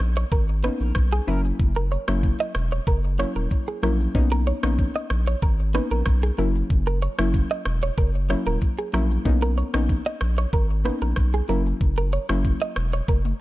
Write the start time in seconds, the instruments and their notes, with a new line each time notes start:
0.00 sub bass A#1
0.17 clean electric guitar C#5, shaker
0.32 sub bass G#1, clean electric guitar A#4, kick, shaker
0.49 shaker
0.63 synth pluck A#3 B3 C#4 D#4, clean electric guitar B4, cross-stick, shaker
0.80 sub bass A#1, clean electric guitar A#4, shaker
0.95 sub bass B1, kick, cross-stick, shaker
1.12 clean electric guitar G#4, shaker
1.27 sub bass F#1, synth pluck F#3 A#3 C#4 E4, clean electric guitar A#4, shaker
1.45 shaker
1.59 sub bass F#1, kick, shaker
1.76 clean electric guitar A#4, shaker
1.92 clean electric guitar C#5, shaker
2.08 sub bass F#1, synth pluck F#3 A#3 C#4 E4, cross-stick, shaker
2.23 kick, shaker
2.40 clean electric guitar D#5, shaker
2.55 sub bass E1, cross-stick, shaker
2.72 clean electric guitar C#5, shaker
2.87 sub bass F#1, clean electric guitar A#4, kick, shaker
3.04 shaker
3.19 synth pluck F#3 A#3 C#4 E4, clean electric guitar C#5, cross-stick, shaker
3.35 sub bass D#1, clean electric guitar A#4, shaker
3.50 kick, shaker
3.67 clean electric guitar G#4, shaker
3.83 sub bass A#1, synth pluck F#3 A#3 C#4 E4, clean electric guitar A#4, cross-stick, shaker
4.00 shaker
4.15 sub bass B1, synth pluck A#3 B3 C#4 D#4, kick, shaker
4.32 clean electric guitar A#4, shaker
4.47 clean electric guitar C#5, shaker
4.63 sub bass A#1, synth pluck A#3 B3 C#4 D#4, cross-stick, shaker
4.79 kick, shaker
4.96 clean electric guitar D#5, shaker
5.10 sub bass A#1, cross-stick
5.28 clean electric guitar C#5, shaker
5.42 sub bass G#1, clean electric guitar A#4, kick, shaker
5.59 shaker
5.74 synth pluck A#3 B3 C#4 D#4, clean electric guitar B4, cross-stick, shaker
5.91 sub bass A#1, clean electric guitar A#4, shaker
6.06 sub bass B1, kick, cross-stick, shaker
6.22 clean electric guitar G#4, shaker
6.38 sub bass F#1, synth pluck F#3 A#3 C#4 E4, clean electric guitar A#4, shaker
6.56 shaker
6.70 sub bass F#1, kick, shaker
6.87 clean electric guitar A#4, shaker
7.02 clean electric guitar C#5, shaker
7.18 sub bass F#1, synth pluck F#3 A#3 C#4 E4, cross-stick, shaker
7.34 kick, shaker
7.51 clean electric guitar D#5, shaker
7.65 sub bass E1, cross-stick
7.83 clean electric guitar C#5, shaker
7.98 sub bass F#1, clean electric guitar A#4, kick, shaker
8.15 shaker
8.29 synth pluck F#3 A#3 C#4 E4, clean electric guitar C#5, cross-stick, shaker
8.46 sub bass D#1, clean electric guitar A#4, shaker
8.61 kick, shaker
8.78 clean electric guitar G#4, shaker
8.93 sub bass A#1, synth pluck F#3 A#3 C#4 E4, clean electric guitar A#4, cross-stick, shaker
9.11 shaker
9.25 sub bass B1, synth pluck A#3 B3 C#4 D#4, kick, shaker
9.42 clean electric guitar A#4, shaker
9.58 clean electric guitar C#5, shaker
9.74 sub bass A#1, synth pluck A#3 B3 C#4 D#4, cross-stick, shaker
9.89 kick, shaker
10.06 clean electric guitar D#5, shaker
10.21 sub bass A#1, cross-stick
10.38 clean electric guitar C#5, shaker
10.53 sub bass G#1, clean electric guitar A#4, kick, shaker
10.70 shaker
10.85 synth pluck A#3 B3 C#4 D#4, clean electric guitar B4, cross-stick, shaker
11.01 sub bass A#1, clean electric guitar A#4, shaker
11.16 sub bass B1, kick, cross-stick, shaker
11.33 clean electric guitar G#4, shaker
11.49 sub bass F#1, synth pluck F#3 A#3 C#4 E4, clean electric guitar A#4, shaker
11.66 shaker
11.81 sub bass F#1, kick, shaker
11.98 clean electric guitar A#4, shaker
12.13 clean electric guitar C#5, shaker
12.29 sub bass F#1, synth pluck F#3 A#3 C#4 E4, cross-stick, shaker
12.45 kick, shaker
12.62 clean electric guitar D#5, shaker
12.76 sub bass E1, cross-stick, shaker
12.93 clean electric guitar C#5, shaker
13.08 sub bass F#1, clean electric guitar A#4, kick, high tom, shaker
13.25 high tom, shaker